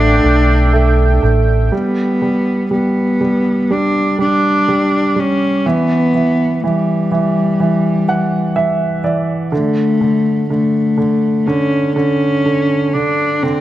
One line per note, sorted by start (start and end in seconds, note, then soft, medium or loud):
0.00 0.20 A1 medium
0.00 0.22 A3 medium
0.00 1.24 D4 medium
0.00 1.68 D4 medium
0.00 1.68 A4 medium
0.00 1.70 E5 medium
0.00 1.70 G5 medium
0.23 1.19 B1 medium
0.23 0.72 A3 soft
0.73 1.21 A3 soft
1.23 1.69 A1 medium
1.23 1.71 A3 soft
1.72 2.20 G3 soft
1.72 2.69 B3 medium
2.22 2.69 G3 soft
2.71 3.19 G3 soft
2.71 3.73 B3 medium
3.21 3.69 G3 soft
3.71 4.17 G3 soft
3.71 4.20 D4 medium
4.19 4.67 G3 soft
4.19 5.21 D4 medium
4.68 5.15 G3 soft
5.16 5.63 G3 soft
5.16 5.69 C#4 medium
5.66 6.13 E3 soft
5.66 6.66 B3 medium
6.14 6.62 E3 soft
6.64 7.10 E3 soft
6.64 9.05 G3 medium
7.11 7.59 E3 soft
7.60 8.07 E3 soft
8.08 8.54 E3 soft
8.08 8.53 F#5 soft
8.56 9.02 E3 soft
8.56 9.01 E5 medium
9.04 9.51 E3 soft
9.04 9.49 D5 soft
9.52 10.00 D3 soft
9.52 10.46 A3 medium
10.01 10.49 D3 soft
10.50 10.96 D3 soft
10.50 11.48 A3 medium
10.98 11.46 D3 soft
11.46 11.94 D3 soft
11.46 11.95 C#4 medium
11.96 12.44 D3 soft
11.96 12.95 C#4 medium
12.46 12.93 D3 soft
12.94 13.42 D3 soft
12.94 13.45 D4 medium
13.43 13.61 D3 soft
13.43 13.61 C4 medium